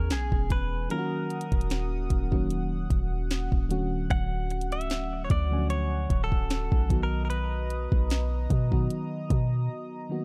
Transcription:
Already playing: 808-style bass E2, fm electric piano E3 G#3 B3 C#4 G#4, clean electric guitar A#4, analog synth pad G#5
0.10 808-style bass B1, clean electric guitar G#4, snare, closed hi-hat
0.32 808-style bass E1, kick
0.50 clean electric guitar B4, kick, closed hi-hat
0.89 fm electric piano D#3 F#3 A#3 C#4 F4, clean electric guitar A#4, analog synth pad F#5 D#6, closed hi-hat
0.98 fm electric piano F#4
1.30 closed hi-hat
1.41 closed hi-hat
1.52 808-style bass D#1, kick, closed hi-hat
1.61 closed hi-hat
1.70 snare, closed hi-hat
2.10 808-style bass D#1, kick, closed hi-hat
2.31 fm electric piano D#3 F#3 A#3 C#4 F#4, kick
2.50 closed hi-hat
2.90 808-style bass D#1, kick, closed hi-hat
3.31 snare, closed hi-hat
3.52 808-style bass D1, kick
3.69 fm electric piano D3 F#3 A3 C#4 F#4, closed hi-hat
4.10 808-style bass D1, clean electric guitar F#5, kick, closed hi-hat
4.50 closed hi-hat
4.61 closed hi-hat
4.72 808-style bass C#1, clean electric guitar E5, closed hi-hat
4.81 closed hi-hat
4.90 snare, closed hi-hat
5.01 808-style bass D1
5.25 clean electric guitar C#5
5.30 808-style bass D2, clean electric guitar D5, kick, closed hi-hat
5.51 fm electric piano D3 F3 A3 C#4 G#5
5.58 fm electric piano F#3
5.70 clean electric guitar C#5, closed hi-hat
6.10 808-style bass D1, kick, closed hi-hat
6.24 clean electric guitar A4
6.32 kick
6.50 snare, closed hi-hat
6.72 808-style bass B1, kick
6.89 fm electric piano D#3 F#3 B3 F#4, analog synth pad D#5 A#5 D#6, kick, closed hi-hat
7.03 clean electric guitar A#4
7.25 clean electric guitar A#4
7.30 clean electric guitar B4, closed hi-hat
7.70 closed hi-hat
7.92 808-style bass B1, kick
8.10 snare, closed hi-hat
8.50 808-style bass B2, kick, closed hi-hat
8.71 fm electric piano D#3 F#3 B3 F#4, kick
8.90 closed hi-hat
9.30 808-style bass B2, kick, closed hi-hat
10.09 fm electric piano D#3 F#3 A#3 B3 F#4

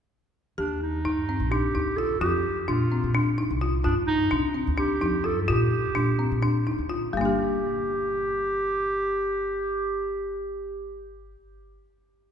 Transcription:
0.58 upright bass D#2, clarinet D4, marimba G4
0.82 clarinet D#4
1.05 upright bass G2, marimba D#4
1.29 marimba C4
1.40 upright bass A#1
1.51 marimba D4, clarinet G4
1.75 upright bass D2, marimba D#4
1.97 marimba F4, clarinet A4
2.10 upright bass D#2
2.20 upright bass F2, marimba F4, clarinet G4
2.61 clarinet G4
2.68 upright bass A#2, marimba D4, clarinet F4
2.92 marimba C4
3.04 upright bass A#2
3.14 marimba D4
3.38 marimba D#4
3.50 upright bass C2
3.61 marimba F4
3.84 upright bass G2, clarinet D4, marimba F4
4.07 clarinet D#4
4.31 upright bass C3, marimba D4
4.54 marimba C4
4.67 upright bass D2
4.77 marimba D4, clarinet G4
5.01 upright bass F2, marimba D#4
5.24 marimba F4, clarinet A4
5.37 upright bass G2
5.42 clarinet A4
5.48 upright bass A#2, marimba F4, clarinet G4
5.95 upright bass A#2, marimba D4
6.19 marimba C4
6.32 upright bass A#2
6.42 marimba D4
6.67 marimba D#4
6.78 upright bass D2
6.89 marimba F4
7.13 upright bass G1, marimba G3, clarinet G4
7.17 marimba A#3 D4
7.25 marimba G4

